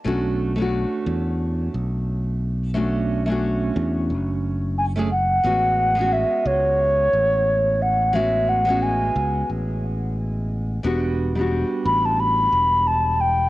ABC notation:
X:1
M:4/4
L:1/16
Q:"Swing 16ths" 1/4=89
K:A
V:1 name="Flute"
z16 | z12 g2 f2- | f4 e2 c8 f2 | e2 f2 g4 z8 |
z6 b a b4 a2 =g2 |]
V:2 name="Nylon-string guitar"
[A,CDF]3 [A,CDF]12- [A,CDF] | [A,CDF]3 [A,CDF]8- [A,CDF]2 [A,CDG] z2 | [G,B,CF]3 [G,B,CF]12- [G,B,CF] | [G,B,CF]3 [G,B,CF]12- [G,B,CF] |
[=G,B,DF]3 [G,B,DF]12- [G,B,DF] |]
V:3 name="Fingered electric bass" clef=bass
B,,,4 z2 E,,4 B,,,6- | B,,,6 E,,2 F,,,8 | A,,,4 z2 C,,4 A,,,6- | A,,,6 C,,2 A,,,8 |
E,,,4 z2 A,,,4 E,,,6 |]